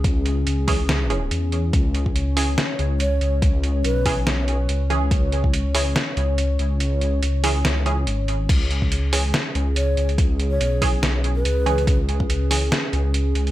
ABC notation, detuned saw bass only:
X:1
M:4/4
L:1/8
Q:"Swing 16ths" 1/4=142
K:C#m
V:1 name="Detuned saw bass" clef=bass
C,,2 C,,4 E,,2 | C,,4 z C,,2 C,,- | C,,2 B,,,4 C,,2 | C,,4 z C,,2 C,,- |
C,,2 C,,2 C,,2 G,,,2 | C,,4 z C,,2 C,,- | C,,2 B,,,4 C,,2 | C,,4 z C,,2 C,, |]